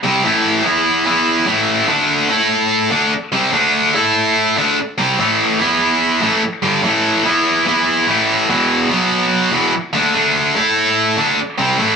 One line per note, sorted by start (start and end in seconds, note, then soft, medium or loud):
0.03 0.23 C3 medium
0.03 0.24 G3 medium
0.03 0.24 C4 medium
0.24 0.64 A2 medium
0.24 0.63 E3 medium
0.24 0.65 A3 loud
0.65 1.04 E3 medium
0.65 1.06 B3 medium
0.65 1.06 E4 medium
1.05 1.46 E3 medium
1.05 1.47 B3 loud
1.05 1.47 E4 loud
1.47 1.88 A2 medium
1.47 1.88 E3 medium
1.47 1.88 A3 medium
1.88 2.29 D3 medium
1.88 2.28 A3 medium
1.88 2.29 D4 loud
2.29 2.90 A3 medium
2.29 2.91 E4 medium
2.29 2.91 A4 medium
2.90 3.11 D3 medium
2.90 3.11 A3 medium
2.90 3.12 D4 medium
3.32 3.52 C3 medium
3.32 3.52 G3 medium
3.32 3.53 C4 medium
3.52 3.93 D3 medium
3.52 3.93 A3 medium
3.52 3.94 D4 medium
3.94 4.56 A3 medium
3.94 4.56 E4 medium
3.94 4.56 A4 medium
4.57 4.77 D3 medium
4.57 4.77 A3 medium
4.57 4.77 D4 medium
4.98 5.18 C3 medium
4.98 5.18 G3 medium
4.98 5.19 C4 medium
5.19 5.59 A2 medium
5.19 5.59 E3 loud
5.19 5.60 A3 medium
5.60 6.21 E3 medium
5.60 6.22 B3 loud
5.60 6.22 E4 loud
6.21 6.42 A2 medium
6.21 6.42 E3 medium
6.21 6.42 A3 medium
6.62 6.83 G2 medium
6.62 6.82 D3 loud
6.62 6.83 G3 medium
6.83 7.24 A2 medium
6.83 7.23 E3 loud
6.83 7.25 A3 medium
7.24 7.64 E3 medium
7.24 7.65 B3 medium
7.24 7.66 E4 loud
7.66 8.07 E3 medium
7.66 8.07 B3 medium
7.66 8.07 E4 loud
8.07 8.48 A2 medium
8.07 8.49 E3 medium
8.07 8.49 A3 medium
8.49 8.90 E2 medium
8.49 8.89 B2 loud
8.49 8.90 E3 loud
8.90 9.51 B2 medium
8.90 9.52 F#3 medium
8.90 9.52 B3 loud
9.51 9.72 E2 medium
9.51 9.72 B2 medium
9.51 9.73 E3 medium
9.93 10.12 D3 medium
9.93 10.13 A3 medium
9.93 10.14 D4 loud
10.14 10.55 D3 medium
10.14 10.54 A3 medium
10.14 10.55 D4 loud
10.55 11.16 A3 medium
10.55 11.17 E4 medium
10.55 11.18 A4 medium
11.17 11.37 D3 medium
11.17 11.38 A3 medium
11.17 11.38 D4 loud
11.58 11.78 C3 medium
11.58 11.79 G3 loud
11.58 11.79 C4 loud
11.78 11.96 A2 medium
11.78 11.96 E3 medium
11.78 11.96 A3 loud